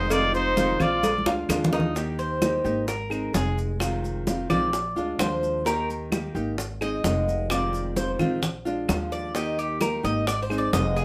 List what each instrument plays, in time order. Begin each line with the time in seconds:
Already playing: upright bass F1, nylon-string guitar D#4 G#4, flute D#4, trumpet C5, cuban tres D#5
0.09 nylon-string guitar C3 D#3 G#3 C4 F4, flute F4, trumpet D5, cowbell, high conga, claves, maracas
0.33 nylon-string guitar G#3 C4 F4, flute D#4, cuban tres C5, trumpet C5, high conga, maracas
0.56 nylon-string guitar C3 D#3 G#3 C4 F4, cowbell, high conga, maracas
0.79 upright bass A#1, nylon-string guitar G#3 C4 F4, cuban tres F4, flute F4, trumpet D5, cowbell, low conga, claves, maracas
1.03 cuban tres D5, muted nylon-string guitar stroke, cowbell, high conga, maracas
1.18 high conga
1.26 upright bass D2, nylon-string guitar G#3 D4 F4, cuban tres F4, high bongo, maracas
1.49 upright bass D#2, nylon-string guitar F3 G#3 D4 F4, cowbell, low bongo, claves, maracas
1.64 low conga
1.73 cuban tres D#4, cowbell, low bongo, maracas
1.80 low conga
1.95 nylon-string guitar D#3 A#3 D#4 G4, high bongo, high conga, maracas
2.19 cuban tres C5, high conga, maracas
2.41 nylon-string guitar D#3 A#3 D#4 G4, high bongo, high conga, claves, maracas
2.64 upright bass G#1, nylon-string guitar A#3 D#4 G4, high conga, maracas
2.87 cuban tres A#4, muted nylon-string guitar stroke, high bongo, high conga, maracas
3.10 nylon-string guitar G#3 C4 D#4 G#4, high conga, claves, maracas
3.33 upright bass F1, nylon-string guitar G#3 C4 D#4 G#4, cuban tres G#4, high bongo, low bongo, high conga, maracas
3.58 high conga, maracas
3.79 nylon-string guitar C3 D#3 G#3 C4 F4, high bongo, high conga, claves, maracas
4.04 high bongo, high conga, maracas
4.27 nylon-string guitar D#3 G#3 C4 F4, high bongo, high conga, maracas
4.50 upright bass A#1, nylon-string guitar D#3 G#3 C4 F4, cuban tres D5, high bongo, low conga, claves, maracas
4.73 muted nylon-string guitar stroke, high bongo, high conga, maracas
4.96 upright bass D2, nylon-string guitar G#3 D4 F4, high conga, maracas
5.19 upright bass D#2, nylon-string guitar F3 G#3 D4 F4, cuban tres C5, high bongo, low bongo, high conga, claves, maracas
5.43 high bongo, high conga, maracas
5.65 nylon-string guitar D#3 A#3 D#4 G4, cuban tres A#4, high bongo, high conga, maracas
5.89 high conga, maracas
6.12 nylon-string guitar D#3 A#3 D#4 G4, high bongo, high conga, claves, maracas
6.35 upright bass G#1, nylon-string guitar A#3 D#4 G4, high conga, maracas
6.58 muted nylon-string guitar stroke, high bongo, high conga, maracas
6.81 nylon-string guitar G#3 C4 D#4 G#4, cuban tres D#5, high conga, claves, maracas
7.04 upright bass F1, nylon-string guitar G#3 C4 D#4 G#4, high bongo, low bongo, high conga, maracas
7.27 high conga, maracas
7.49 nylon-string guitar C3 D#3 G#3 C4 F4, cuban tres D5, high bongo, high conga, claves, maracas
7.73 high bongo, high conga, maracas
7.96 nylon-string guitar D#3 G#3 C4 F4, cuban tres C5, high bongo, high conga, maracas
8.19 upright bass A#1, nylon-string guitar D#3 G#3 C4 F4, high bongo, low conga, claves, maracas
8.42 muted nylon-string guitar stroke, high bongo, high conga, low conga, maracas
8.65 nylon-string guitar G#3 D4 F4, high conga, maracas
8.88 upright bass D#2, nylon-string guitar F3 G#3 D4 F4, high bongo, low bongo, high conga, claves, maracas
9.12 cuban tres D5, high bongo, high conga, maracas
9.34 nylon-string guitar D#3 A#3 D#4 G4, cuban tres D#5, high bongo, high conga, maracas
9.58 cuban tres G4, high conga, maracas
9.80 nylon-string guitar D#3 A#3 D#4 G4, cuban tres A#4, high bongo, high conga, claves, maracas
10.03 upright bass G#1, nylon-string guitar A#3 D#4 G4, cuban tres D#5, high conga, maracas
10.27 cuban tres D5, muted nylon-string guitar stroke, high bongo, high conga, maracas
10.43 cuban tres C5
10.50 nylon-string guitar G#3 C4 D#4 G#4, high conga, claves, maracas
10.58 cuban tres D5
10.73 upright bass F1, nylon-string guitar G#3 C4 D#4 G#4, cuban tres D#5, high bongo, low bongo, high conga, maracas
10.96 cuban tres G#4, high conga, maracas